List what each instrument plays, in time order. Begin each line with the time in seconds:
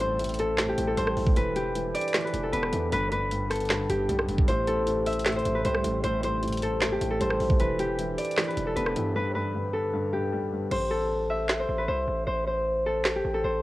Already playing: 808-style bass A1, grand piano G3, ambient pad G3 C4 A4, harp A4 E5
0.00 grand piano A2, harp C5, closed hi-hat
0.19 grand piano A2, closed hi-hat
0.24 closed hi-hat
0.29 closed hi-hat
0.34 closed hi-hat
0.39 harp A4, closed hi-hat
0.58 grand piano A2, snare, clap, closed hi-hat
0.69 harp G4
0.78 808-style bass A1, grand piano A2, closed hi-hat
0.87 harp A4
0.97 808-style bass A1, grand piano G3, harp C5, closed hi-hat
1.07 cross-stick
1.17 808-style bass A1, grand piano A2, open hi-hat
1.27 kick
1.36 808-style bass E1, grand piano E3, ambient pad E3 D4 G4, harp B4, closed hi-hat
1.56 grand piano E3, harp G4, closed hi-hat
1.75 grand piano E3, closed hi-hat
1.95 harp D5, closed hi-hat, open hi-hat
2.01 closed hi-hat
2.08 closed hi-hat
2.14 grand piano E3, snare, clap, closed hi-hat
2.21 harp B4, closed hi-hat
2.27 closed hi-hat
2.34 808-style bass E1, grand piano E3, closed hi-hat
2.43 harp A4
2.53 808-style bass E1, grand piano B3, harp B4, closed hi-hat
2.63 cross-stick
2.73 808-style bass E2, grand piano E3, closed hi-hat
2.92 808-style bass G1, grand piano G2, ambient pad D3 B3 G4, harp B4, closed hi-hat
3.12 grand piano G2, harp B4, closed hi-hat
3.31 grand piano G2, closed hi-hat
3.50 harp A4, cross-stick, closed hi-hat, open hi-hat
3.56 closed hi-hat
3.60 closed hi-hat
3.65 closed hi-hat
3.69 grand piano G2, snare, clap, closed hi-hat
3.89 808-style bass G1, grand piano G2, harp G4, closed hi-hat
4.09 808-style bass B1, grand piano G3, closed hi-hat
4.19 cross-stick
4.28 808-style bass F1, grand piano G2, closed hi-hat
4.38 kick
4.48 808-style bass A1, grand piano A2, ambient pad C3 A3, harp C5, closed hi-hat
4.67 grand piano A2, harp A4, closed hi-hat
4.87 grand piano A2, closed hi-hat
5.06 harp E5, closed hi-hat, open hi-hat
5.13 closed hi-hat
5.19 closed hi-hat
5.25 grand piano A2, snare, clap, closed hi-hat
5.32 harp C5, closed hi-hat
5.39 closed hi-hat
5.45 808-style bass A1, grand piano A2, closed hi-hat
5.55 harp B4
5.65 808-style bass C2, grand piano G3, harp C5, closed hi-hat
5.75 cross-stick
5.84 808-style bass A1, grand piano A2, closed hi-hat
6.03 808-style bass A1, grand piano A2, harp C5, closed hi-hat
6.23 grand piano A2, harp C5, closed hi-hat
6.42 grand piano A2, closed hi-hat
6.48 closed hi-hat
6.53 closed hi-hat
6.57 closed hi-hat
6.62 harp A4, closed hi-hat
6.81 grand piano A2, snare, clap, closed hi-hat
6.92 harp G4
7.01 808-style bass A1, grand piano A2, closed hi-hat
7.11 harp A4
7.21 808-style bass A1, grand piano G3, harp C5, closed hi-hat
7.30 cross-stick
7.40 808-style bass A1, grand piano A2, open hi-hat
7.50 kick
7.60 808-style bass E1, grand piano E3, ambient pad E3 D4 G4, harp B4, closed hi-hat
7.79 grand piano E3, harp G4, closed hi-hat
7.99 grand piano E3, closed hi-hat
8.18 harp D5, closed hi-hat, open hi-hat
8.25 closed hi-hat
8.31 closed hi-hat
8.37 grand piano E3, snare, clap, closed hi-hat
8.44 harp B4, closed hi-hat
8.51 closed hi-hat
8.57 808-style bass E1, grand piano E3, closed hi-hat
8.67 harp A4
8.76 808-style bass E1, grand piano B3, harp B4, closed hi-hat
8.86 cross-stick
8.96 808-style bass G2, grand piano E3, closed hi-hat
9.15 grand piano G2, ambient pad D3 B3, harp B4
9.35 grand piano G2, harp B4
9.55 grand piano G2
9.73 harp A4
9.93 grand piano G2
10.13 grand piano G2, harp G4
10.33 grand piano G3
10.52 grand piano G2
10.71 808-style bass A1, harp C5, crash
10.91 harp A4
11.30 harp E5
11.49 snare, clap
11.59 harp C5
11.69 808-style bass A1
11.78 harp B4
11.88 808-style bass C2, harp C5
12.08 808-style bass A1
12.27 808-style bass A1, harp C5
12.47 harp C5
12.86 harp A4
13.05 snare, clap
13.15 harp G4
13.25 808-style bass A1
13.34 harp A4
13.44 808-style bass A1, harp C5